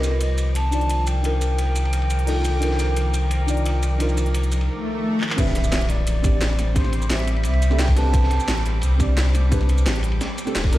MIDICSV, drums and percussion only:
0, 0, Header, 1, 2, 480
1, 0, Start_track
1, 0, Key_signature, 0, "minor"
1, 0, Tempo, 344828
1, 1729, Time_signature, 4, 2, 24, 8
1, 15007, End_track
2, 0, Start_track
2, 0, Title_t, "Drums"
2, 48, Note_on_c, 9, 42, 56
2, 48, Note_on_c, 9, 82, 53
2, 52, Note_on_c, 9, 38, 36
2, 54, Note_on_c, 9, 51, 67
2, 187, Note_off_c, 9, 42, 0
2, 187, Note_off_c, 9, 82, 0
2, 192, Note_off_c, 9, 38, 0
2, 194, Note_off_c, 9, 51, 0
2, 285, Note_on_c, 9, 51, 79
2, 287, Note_on_c, 9, 42, 80
2, 424, Note_off_c, 9, 51, 0
2, 426, Note_off_c, 9, 42, 0
2, 525, Note_on_c, 9, 51, 66
2, 527, Note_on_c, 9, 42, 56
2, 527, Note_on_c, 9, 82, 53
2, 664, Note_off_c, 9, 51, 0
2, 666, Note_off_c, 9, 42, 0
2, 666, Note_off_c, 9, 82, 0
2, 768, Note_on_c, 9, 42, 81
2, 778, Note_on_c, 9, 51, 78
2, 908, Note_off_c, 9, 42, 0
2, 917, Note_off_c, 9, 51, 0
2, 1007, Note_on_c, 9, 42, 59
2, 1007, Note_on_c, 9, 82, 56
2, 1016, Note_on_c, 9, 51, 67
2, 1131, Note_off_c, 9, 42, 0
2, 1131, Note_on_c, 9, 42, 33
2, 1146, Note_off_c, 9, 82, 0
2, 1155, Note_off_c, 9, 51, 0
2, 1246, Note_off_c, 9, 42, 0
2, 1246, Note_on_c, 9, 42, 82
2, 1256, Note_on_c, 9, 51, 81
2, 1385, Note_off_c, 9, 42, 0
2, 1395, Note_off_c, 9, 51, 0
2, 1487, Note_on_c, 9, 42, 61
2, 1487, Note_on_c, 9, 82, 56
2, 1491, Note_on_c, 9, 51, 69
2, 1626, Note_off_c, 9, 42, 0
2, 1626, Note_off_c, 9, 82, 0
2, 1630, Note_off_c, 9, 51, 0
2, 1728, Note_on_c, 9, 42, 87
2, 1738, Note_on_c, 9, 51, 81
2, 1867, Note_off_c, 9, 42, 0
2, 1877, Note_off_c, 9, 51, 0
2, 1967, Note_on_c, 9, 42, 59
2, 1967, Note_on_c, 9, 82, 55
2, 1971, Note_on_c, 9, 51, 66
2, 2107, Note_off_c, 9, 42, 0
2, 2107, Note_off_c, 9, 82, 0
2, 2110, Note_off_c, 9, 51, 0
2, 2205, Note_on_c, 9, 51, 80
2, 2206, Note_on_c, 9, 42, 83
2, 2344, Note_off_c, 9, 51, 0
2, 2346, Note_off_c, 9, 42, 0
2, 2443, Note_on_c, 9, 51, 62
2, 2445, Note_on_c, 9, 42, 59
2, 2445, Note_on_c, 9, 82, 57
2, 2579, Note_off_c, 9, 51, 0
2, 2579, Note_on_c, 9, 51, 42
2, 2585, Note_off_c, 9, 42, 0
2, 2585, Note_off_c, 9, 82, 0
2, 2685, Note_off_c, 9, 51, 0
2, 2685, Note_on_c, 9, 42, 88
2, 2685, Note_on_c, 9, 51, 79
2, 2808, Note_off_c, 9, 51, 0
2, 2808, Note_on_c, 9, 51, 41
2, 2824, Note_off_c, 9, 42, 0
2, 2926, Note_on_c, 9, 42, 62
2, 2926, Note_on_c, 9, 82, 59
2, 2927, Note_off_c, 9, 51, 0
2, 2927, Note_on_c, 9, 51, 69
2, 3046, Note_off_c, 9, 42, 0
2, 3046, Note_on_c, 9, 42, 33
2, 3065, Note_off_c, 9, 82, 0
2, 3066, Note_off_c, 9, 51, 0
2, 3164, Note_off_c, 9, 42, 0
2, 3164, Note_on_c, 9, 42, 85
2, 3179, Note_on_c, 9, 46, 71
2, 3303, Note_off_c, 9, 42, 0
2, 3318, Note_off_c, 9, 46, 0
2, 3404, Note_on_c, 9, 42, 62
2, 3404, Note_on_c, 9, 82, 58
2, 3410, Note_on_c, 9, 51, 67
2, 3543, Note_off_c, 9, 42, 0
2, 3543, Note_off_c, 9, 82, 0
2, 3549, Note_off_c, 9, 51, 0
2, 3645, Note_on_c, 9, 42, 90
2, 3655, Note_on_c, 9, 51, 87
2, 3769, Note_on_c, 9, 38, 46
2, 3784, Note_off_c, 9, 42, 0
2, 3794, Note_off_c, 9, 51, 0
2, 3885, Note_on_c, 9, 42, 62
2, 3885, Note_on_c, 9, 82, 56
2, 3890, Note_off_c, 9, 38, 0
2, 3890, Note_on_c, 9, 38, 36
2, 3892, Note_on_c, 9, 51, 69
2, 4024, Note_off_c, 9, 42, 0
2, 4024, Note_off_c, 9, 82, 0
2, 4029, Note_off_c, 9, 38, 0
2, 4031, Note_off_c, 9, 51, 0
2, 4127, Note_on_c, 9, 42, 87
2, 4128, Note_on_c, 9, 51, 75
2, 4266, Note_off_c, 9, 42, 0
2, 4268, Note_off_c, 9, 51, 0
2, 4368, Note_on_c, 9, 42, 62
2, 4368, Note_on_c, 9, 82, 58
2, 4370, Note_on_c, 9, 51, 69
2, 4507, Note_off_c, 9, 42, 0
2, 4507, Note_off_c, 9, 82, 0
2, 4509, Note_off_c, 9, 51, 0
2, 4603, Note_on_c, 9, 51, 74
2, 4608, Note_on_c, 9, 42, 89
2, 4742, Note_off_c, 9, 51, 0
2, 4747, Note_off_c, 9, 42, 0
2, 4846, Note_on_c, 9, 51, 61
2, 4848, Note_on_c, 9, 42, 64
2, 4848, Note_on_c, 9, 82, 60
2, 4970, Note_off_c, 9, 42, 0
2, 4970, Note_on_c, 9, 42, 36
2, 4985, Note_off_c, 9, 51, 0
2, 4987, Note_off_c, 9, 82, 0
2, 5089, Note_off_c, 9, 42, 0
2, 5089, Note_on_c, 9, 42, 90
2, 5095, Note_on_c, 9, 51, 83
2, 5228, Note_off_c, 9, 42, 0
2, 5234, Note_off_c, 9, 51, 0
2, 5327, Note_on_c, 9, 51, 57
2, 5328, Note_on_c, 9, 42, 64
2, 5328, Note_on_c, 9, 82, 59
2, 5466, Note_off_c, 9, 51, 0
2, 5467, Note_off_c, 9, 42, 0
2, 5467, Note_off_c, 9, 82, 0
2, 5566, Note_on_c, 9, 51, 86
2, 5571, Note_on_c, 9, 42, 94
2, 5692, Note_on_c, 9, 82, 27
2, 5706, Note_off_c, 9, 51, 0
2, 5710, Note_off_c, 9, 42, 0
2, 5810, Note_off_c, 9, 82, 0
2, 5810, Note_on_c, 9, 42, 62
2, 5810, Note_on_c, 9, 82, 55
2, 5813, Note_on_c, 9, 51, 64
2, 5931, Note_off_c, 9, 42, 0
2, 5931, Note_on_c, 9, 42, 35
2, 5950, Note_off_c, 9, 82, 0
2, 5952, Note_off_c, 9, 51, 0
2, 6045, Note_on_c, 9, 51, 87
2, 6049, Note_off_c, 9, 42, 0
2, 6049, Note_on_c, 9, 42, 88
2, 6173, Note_off_c, 9, 42, 0
2, 6173, Note_on_c, 9, 42, 37
2, 6173, Note_on_c, 9, 82, 27
2, 6185, Note_off_c, 9, 51, 0
2, 6288, Note_off_c, 9, 42, 0
2, 6288, Note_off_c, 9, 82, 0
2, 6288, Note_on_c, 9, 42, 64
2, 6288, Note_on_c, 9, 82, 56
2, 6291, Note_on_c, 9, 51, 60
2, 6416, Note_off_c, 9, 51, 0
2, 6416, Note_on_c, 9, 51, 45
2, 6428, Note_off_c, 9, 42, 0
2, 6428, Note_off_c, 9, 82, 0
2, 6555, Note_off_c, 9, 51, 0
2, 7250, Note_on_c, 9, 39, 83
2, 7371, Note_off_c, 9, 39, 0
2, 7371, Note_on_c, 9, 39, 93
2, 7488, Note_on_c, 9, 36, 120
2, 7490, Note_on_c, 9, 42, 99
2, 7490, Note_on_c, 9, 49, 105
2, 7490, Note_on_c, 9, 82, 50
2, 7501, Note_on_c, 9, 51, 83
2, 7511, Note_off_c, 9, 39, 0
2, 7605, Note_on_c, 9, 38, 49
2, 7627, Note_off_c, 9, 36, 0
2, 7629, Note_off_c, 9, 42, 0
2, 7629, Note_off_c, 9, 49, 0
2, 7629, Note_off_c, 9, 82, 0
2, 7640, Note_off_c, 9, 51, 0
2, 7723, Note_off_c, 9, 38, 0
2, 7723, Note_on_c, 9, 38, 44
2, 7729, Note_on_c, 9, 42, 70
2, 7729, Note_on_c, 9, 51, 72
2, 7850, Note_off_c, 9, 42, 0
2, 7850, Note_on_c, 9, 42, 38
2, 7850, Note_on_c, 9, 82, 56
2, 7862, Note_off_c, 9, 38, 0
2, 7868, Note_off_c, 9, 51, 0
2, 7961, Note_on_c, 9, 51, 91
2, 7967, Note_on_c, 9, 38, 118
2, 7968, Note_off_c, 9, 38, 0
2, 7968, Note_off_c, 9, 42, 0
2, 7968, Note_off_c, 9, 82, 0
2, 7968, Note_on_c, 9, 38, 113
2, 7968, Note_on_c, 9, 42, 93
2, 7968, Note_on_c, 9, 82, 49
2, 8090, Note_off_c, 9, 42, 0
2, 8090, Note_on_c, 9, 42, 40
2, 8100, Note_off_c, 9, 51, 0
2, 8107, Note_off_c, 9, 38, 0
2, 8107, Note_off_c, 9, 82, 0
2, 8192, Note_on_c, 9, 51, 59
2, 8205, Note_on_c, 9, 38, 38
2, 8208, Note_off_c, 9, 42, 0
2, 8208, Note_on_c, 9, 42, 68
2, 8331, Note_off_c, 9, 51, 0
2, 8344, Note_off_c, 9, 38, 0
2, 8347, Note_off_c, 9, 42, 0
2, 8447, Note_on_c, 9, 42, 97
2, 8447, Note_on_c, 9, 82, 50
2, 8451, Note_on_c, 9, 51, 84
2, 8586, Note_off_c, 9, 42, 0
2, 8586, Note_off_c, 9, 82, 0
2, 8590, Note_off_c, 9, 51, 0
2, 8688, Note_on_c, 9, 36, 103
2, 8688, Note_on_c, 9, 42, 69
2, 8688, Note_on_c, 9, 82, 61
2, 8691, Note_on_c, 9, 51, 72
2, 8827, Note_off_c, 9, 36, 0
2, 8827, Note_off_c, 9, 42, 0
2, 8827, Note_off_c, 9, 82, 0
2, 8830, Note_off_c, 9, 51, 0
2, 8927, Note_on_c, 9, 38, 123
2, 8927, Note_on_c, 9, 42, 100
2, 8927, Note_on_c, 9, 82, 49
2, 8932, Note_on_c, 9, 51, 89
2, 8935, Note_off_c, 9, 38, 0
2, 8935, Note_on_c, 9, 38, 110
2, 9066, Note_off_c, 9, 42, 0
2, 9066, Note_off_c, 9, 82, 0
2, 9071, Note_off_c, 9, 51, 0
2, 9074, Note_off_c, 9, 38, 0
2, 9168, Note_on_c, 9, 51, 73
2, 9170, Note_on_c, 9, 40, 39
2, 9170, Note_on_c, 9, 42, 71
2, 9170, Note_on_c, 9, 82, 28
2, 9307, Note_off_c, 9, 51, 0
2, 9309, Note_off_c, 9, 40, 0
2, 9309, Note_off_c, 9, 42, 0
2, 9309, Note_off_c, 9, 82, 0
2, 9405, Note_on_c, 9, 51, 85
2, 9407, Note_on_c, 9, 36, 122
2, 9408, Note_on_c, 9, 42, 95
2, 9408, Note_on_c, 9, 82, 49
2, 9527, Note_on_c, 9, 40, 35
2, 9544, Note_off_c, 9, 51, 0
2, 9546, Note_off_c, 9, 36, 0
2, 9547, Note_off_c, 9, 42, 0
2, 9547, Note_off_c, 9, 82, 0
2, 9639, Note_on_c, 9, 51, 67
2, 9647, Note_on_c, 9, 42, 66
2, 9666, Note_off_c, 9, 40, 0
2, 9770, Note_off_c, 9, 42, 0
2, 9770, Note_on_c, 9, 42, 36
2, 9770, Note_on_c, 9, 82, 56
2, 9778, Note_off_c, 9, 51, 0
2, 9885, Note_off_c, 9, 42, 0
2, 9885, Note_off_c, 9, 82, 0
2, 9885, Note_on_c, 9, 38, 122
2, 9885, Note_on_c, 9, 42, 89
2, 9885, Note_on_c, 9, 82, 46
2, 9889, Note_on_c, 9, 51, 80
2, 9892, Note_off_c, 9, 38, 0
2, 9892, Note_on_c, 9, 38, 111
2, 10007, Note_off_c, 9, 42, 0
2, 10007, Note_on_c, 9, 42, 37
2, 10025, Note_off_c, 9, 82, 0
2, 10029, Note_off_c, 9, 51, 0
2, 10031, Note_off_c, 9, 38, 0
2, 10123, Note_on_c, 9, 51, 73
2, 10128, Note_off_c, 9, 42, 0
2, 10128, Note_on_c, 9, 42, 65
2, 10251, Note_off_c, 9, 51, 0
2, 10251, Note_on_c, 9, 51, 43
2, 10267, Note_off_c, 9, 42, 0
2, 10348, Note_off_c, 9, 51, 0
2, 10348, Note_on_c, 9, 51, 94
2, 10367, Note_on_c, 9, 42, 95
2, 10367, Note_on_c, 9, 82, 47
2, 10487, Note_off_c, 9, 51, 0
2, 10487, Note_on_c, 9, 51, 41
2, 10506, Note_off_c, 9, 42, 0
2, 10506, Note_off_c, 9, 82, 0
2, 10607, Note_on_c, 9, 42, 67
2, 10607, Note_on_c, 9, 82, 58
2, 10608, Note_off_c, 9, 51, 0
2, 10608, Note_on_c, 9, 51, 67
2, 10730, Note_on_c, 9, 40, 35
2, 10746, Note_off_c, 9, 42, 0
2, 10746, Note_off_c, 9, 82, 0
2, 10747, Note_off_c, 9, 51, 0
2, 10842, Note_on_c, 9, 46, 74
2, 10844, Note_on_c, 9, 38, 107
2, 10847, Note_off_c, 9, 38, 0
2, 10847, Note_on_c, 9, 38, 121
2, 10847, Note_on_c, 9, 42, 94
2, 10847, Note_on_c, 9, 82, 48
2, 10869, Note_off_c, 9, 40, 0
2, 10968, Note_on_c, 9, 36, 106
2, 10981, Note_off_c, 9, 46, 0
2, 10986, Note_off_c, 9, 38, 0
2, 10986, Note_off_c, 9, 42, 0
2, 10986, Note_off_c, 9, 82, 0
2, 11088, Note_on_c, 9, 40, 38
2, 11088, Note_on_c, 9, 42, 69
2, 11088, Note_on_c, 9, 51, 67
2, 11088, Note_on_c, 9, 82, 27
2, 11107, Note_off_c, 9, 36, 0
2, 11227, Note_off_c, 9, 40, 0
2, 11227, Note_off_c, 9, 42, 0
2, 11227, Note_off_c, 9, 51, 0
2, 11227, Note_off_c, 9, 82, 0
2, 11325, Note_on_c, 9, 36, 123
2, 11327, Note_on_c, 9, 42, 95
2, 11327, Note_on_c, 9, 82, 48
2, 11337, Note_on_c, 9, 51, 90
2, 11459, Note_on_c, 9, 38, 53
2, 11464, Note_off_c, 9, 36, 0
2, 11466, Note_off_c, 9, 42, 0
2, 11466, Note_off_c, 9, 82, 0
2, 11476, Note_off_c, 9, 51, 0
2, 11560, Note_on_c, 9, 51, 74
2, 11567, Note_on_c, 9, 42, 65
2, 11568, Note_off_c, 9, 38, 0
2, 11568, Note_on_c, 9, 38, 44
2, 11690, Note_off_c, 9, 42, 0
2, 11690, Note_on_c, 9, 42, 35
2, 11690, Note_on_c, 9, 82, 56
2, 11699, Note_off_c, 9, 51, 0
2, 11707, Note_off_c, 9, 38, 0
2, 11806, Note_on_c, 9, 38, 109
2, 11809, Note_off_c, 9, 38, 0
2, 11809, Note_off_c, 9, 42, 0
2, 11809, Note_off_c, 9, 82, 0
2, 11809, Note_on_c, 9, 38, 125
2, 11809, Note_on_c, 9, 42, 87
2, 11809, Note_on_c, 9, 82, 47
2, 11815, Note_on_c, 9, 51, 88
2, 11930, Note_off_c, 9, 42, 0
2, 11930, Note_on_c, 9, 42, 36
2, 11948, Note_off_c, 9, 38, 0
2, 11948, Note_off_c, 9, 82, 0
2, 11954, Note_off_c, 9, 51, 0
2, 12050, Note_off_c, 9, 42, 0
2, 12050, Note_on_c, 9, 42, 64
2, 12053, Note_on_c, 9, 51, 65
2, 12189, Note_off_c, 9, 42, 0
2, 12192, Note_off_c, 9, 51, 0
2, 12271, Note_on_c, 9, 51, 91
2, 12291, Note_on_c, 9, 42, 90
2, 12291, Note_on_c, 9, 82, 49
2, 12410, Note_off_c, 9, 51, 0
2, 12430, Note_off_c, 9, 42, 0
2, 12430, Note_off_c, 9, 82, 0
2, 12520, Note_on_c, 9, 51, 70
2, 12527, Note_on_c, 9, 36, 106
2, 12529, Note_on_c, 9, 42, 67
2, 12529, Note_on_c, 9, 82, 59
2, 12660, Note_off_c, 9, 51, 0
2, 12666, Note_off_c, 9, 36, 0
2, 12668, Note_off_c, 9, 42, 0
2, 12668, Note_off_c, 9, 82, 0
2, 12766, Note_on_c, 9, 38, 116
2, 12770, Note_off_c, 9, 38, 0
2, 12770, Note_on_c, 9, 38, 126
2, 12770, Note_on_c, 9, 42, 91
2, 12770, Note_on_c, 9, 82, 46
2, 12773, Note_on_c, 9, 51, 81
2, 12909, Note_off_c, 9, 38, 0
2, 12909, Note_off_c, 9, 42, 0
2, 12909, Note_off_c, 9, 82, 0
2, 12912, Note_off_c, 9, 51, 0
2, 13007, Note_on_c, 9, 51, 71
2, 13011, Note_on_c, 9, 40, 37
2, 13011, Note_on_c, 9, 42, 65
2, 13011, Note_on_c, 9, 82, 27
2, 13146, Note_off_c, 9, 51, 0
2, 13151, Note_off_c, 9, 40, 0
2, 13151, Note_off_c, 9, 42, 0
2, 13151, Note_off_c, 9, 82, 0
2, 13248, Note_on_c, 9, 36, 124
2, 13251, Note_on_c, 9, 42, 91
2, 13251, Note_on_c, 9, 51, 83
2, 13251, Note_on_c, 9, 82, 50
2, 13373, Note_on_c, 9, 40, 32
2, 13387, Note_off_c, 9, 36, 0
2, 13390, Note_off_c, 9, 42, 0
2, 13390, Note_off_c, 9, 51, 0
2, 13390, Note_off_c, 9, 82, 0
2, 13489, Note_on_c, 9, 42, 60
2, 13492, Note_on_c, 9, 51, 65
2, 13512, Note_off_c, 9, 40, 0
2, 13614, Note_off_c, 9, 42, 0
2, 13614, Note_on_c, 9, 42, 34
2, 13614, Note_on_c, 9, 82, 57
2, 13631, Note_off_c, 9, 51, 0
2, 13730, Note_off_c, 9, 42, 0
2, 13730, Note_off_c, 9, 82, 0
2, 13730, Note_on_c, 9, 38, 120
2, 13730, Note_on_c, 9, 42, 87
2, 13730, Note_on_c, 9, 82, 47
2, 13735, Note_on_c, 9, 51, 86
2, 13741, Note_off_c, 9, 38, 0
2, 13741, Note_on_c, 9, 38, 123
2, 13854, Note_off_c, 9, 42, 0
2, 13854, Note_on_c, 9, 42, 35
2, 13869, Note_off_c, 9, 82, 0
2, 13874, Note_off_c, 9, 51, 0
2, 13880, Note_off_c, 9, 38, 0
2, 13958, Note_on_c, 9, 51, 66
2, 13975, Note_off_c, 9, 42, 0
2, 13975, Note_on_c, 9, 42, 63
2, 14082, Note_off_c, 9, 51, 0
2, 14082, Note_on_c, 9, 51, 46
2, 14114, Note_off_c, 9, 42, 0
2, 14207, Note_off_c, 9, 51, 0
2, 14207, Note_on_c, 9, 51, 82
2, 14213, Note_on_c, 9, 38, 98
2, 14213, Note_on_c, 9, 40, 33
2, 14213, Note_on_c, 9, 42, 88
2, 14213, Note_on_c, 9, 82, 49
2, 14346, Note_off_c, 9, 51, 0
2, 14352, Note_off_c, 9, 40, 0
2, 14352, Note_off_c, 9, 42, 0
2, 14352, Note_off_c, 9, 82, 0
2, 14353, Note_off_c, 9, 38, 0
2, 14450, Note_on_c, 9, 42, 63
2, 14450, Note_on_c, 9, 51, 59
2, 14450, Note_on_c, 9, 82, 58
2, 14574, Note_off_c, 9, 42, 0
2, 14574, Note_on_c, 9, 40, 33
2, 14574, Note_on_c, 9, 42, 36
2, 14589, Note_off_c, 9, 51, 0
2, 14589, Note_off_c, 9, 82, 0
2, 14687, Note_on_c, 9, 38, 117
2, 14689, Note_on_c, 9, 46, 77
2, 14692, Note_off_c, 9, 38, 0
2, 14692, Note_off_c, 9, 42, 0
2, 14692, Note_on_c, 9, 38, 125
2, 14692, Note_on_c, 9, 42, 89
2, 14692, Note_on_c, 9, 82, 48
2, 14713, Note_off_c, 9, 40, 0
2, 14810, Note_on_c, 9, 36, 105
2, 14828, Note_off_c, 9, 46, 0
2, 14831, Note_off_c, 9, 38, 0
2, 14831, Note_off_c, 9, 42, 0
2, 14831, Note_off_c, 9, 82, 0
2, 14925, Note_on_c, 9, 51, 63
2, 14931, Note_on_c, 9, 40, 36
2, 14931, Note_on_c, 9, 42, 65
2, 14931, Note_on_c, 9, 82, 27
2, 14949, Note_off_c, 9, 36, 0
2, 15007, Note_off_c, 9, 40, 0
2, 15007, Note_off_c, 9, 42, 0
2, 15007, Note_off_c, 9, 51, 0
2, 15007, Note_off_c, 9, 82, 0
2, 15007, End_track
0, 0, End_of_file